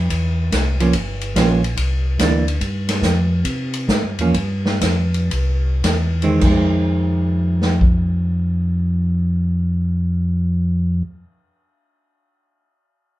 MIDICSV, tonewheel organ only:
0, 0, Header, 1, 2, 480
1, 0, Start_track
1, 0, Tempo, 418702
1, 1076, Time_signature, 4, 2, 24, 8
1, 3961, Tempo, 446097
1, 4921, Tempo, 487409
1, 5881, Tempo, 552995
1, 6841, Tempo, 596421
1, 12287, End_track
2, 0, Start_track
2, 0, Title_t, "Tonewheel organ"
2, 0, Program_c, 0, 16
2, 115, Note_on_c, 0, 40, 81
2, 582, Note_off_c, 0, 40, 0
2, 595, Note_on_c, 0, 36, 76
2, 1061, Note_off_c, 0, 36, 0
2, 1075, Note_on_c, 0, 31, 73
2, 1540, Note_off_c, 0, 31, 0
2, 1555, Note_on_c, 0, 34, 90
2, 2019, Note_off_c, 0, 34, 0
2, 2029, Note_on_c, 0, 36, 81
2, 2495, Note_off_c, 0, 36, 0
2, 2505, Note_on_c, 0, 38, 79
2, 2972, Note_off_c, 0, 38, 0
2, 2991, Note_on_c, 0, 43, 79
2, 3457, Note_off_c, 0, 43, 0
2, 3462, Note_on_c, 0, 41, 88
2, 3941, Note_off_c, 0, 41, 0
2, 3949, Note_on_c, 0, 48, 82
2, 4412, Note_off_c, 0, 48, 0
2, 4420, Note_on_c, 0, 44, 80
2, 4582, Note_off_c, 0, 44, 0
2, 4585, Note_on_c, 0, 43, 51
2, 4750, Note_on_c, 0, 40, 54
2, 4752, Note_off_c, 0, 43, 0
2, 4906, Note_off_c, 0, 40, 0
2, 4914, Note_on_c, 0, 43, 80
2, 5371, Note_off_c, 0, 43, 0
2, 5377, Note_on_c, 0, 41, 78
2, 5860, Note_off_c, 0, 41, 0
2, 5866, Note_on_c, 0, 36, 85
2, 6323, Note_off_c, 0, 36, 0
2, 6328, Note_on_c, 0, 40, 72
2, 6818, Note_off_c, 0, 40, 0
2, 6828, Note_on_c, 0, 41, 78
2, 10542, Note_off_c, 0, 41, 0
2, 12287, End_track
0, 0, End_of_file